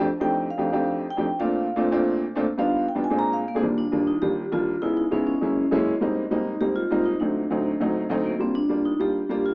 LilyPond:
<<
  \new Staff \with { instrumentName = "Vibraphone" } { \time 4/4 \key bes \major \tempo 4 = 201 << { r8 g''4 f''4. r8 g''8~ | g''8 f''4. r2 | r8 f''4 g''8 aes''8 bes''8 f''8. r16 | \key ees \major r1 |
r1 | r1 | r1 | r1 | } \\ { r1 | r1 | r2. r8 bes8~ | bes8 d'4 ees'8 g'4 f'4 |
fes'8 ees'8 des'8 des'4. r4 | r4 ees'4 g'8 f'4 ees'8 | d'2 r4. bes8 | c'8 d'4 ees'8 g'4 g'8 f'8 | } >> }
  \new Staff \with { instrumentName = "Upright piano" } { \time 4/4 \key bes \major r8 <f, a c' d' ees' g'>4 r16 <f, a c' d' ees' g'>16 r16 <f, a c' d' ees' g'>4 r8 <f, a c' d' ees' g'>16 | r8 <bes, a c' d' f'>4 r16 <bes, a c' d' f'>16 r16 <bes, a c' d' f'>4 r8 <bes, a c' d' f'>16 | r8 <g, b d' ees' f'>4 r16 <g, b d' ees' f'>16 r16 <bes, aes c' d' f'>4 r8 <bes, aes c' d' aes'>16 | \key ees \major <ees, g bes d' f'>8. r16 <ees, g bes d' f'>8. r16 <ees, g bes d' f'>8. r16 <ees, g bes d' f'>8. r16 |
<des aes ces' ees' fes'>8. r16 <des aes ces' ees' fes'>8. r16 <ges, aes bes des' fes'>8. r16 <ges, aes bes des' fes'>8. r16 | <aes, g bes c' ees'>8. r16 <aes, g bes c' ees'>8. r16 <aes, g bes c' ees'>8. r16 <aes, g bes c' ees'>8. r16 | <d, fis a c' ees'>8. r16 <d, fis a c' ees'>8. r16 <d, fis a c' ees'>8. r16 <d, fis a c' ees'>8. r16 | <g bes d' f'>8. r16 <g bes d' f'>8. r16 <g bes d' f'>8. r16 <g bes d' f'>8. r16 | }
>>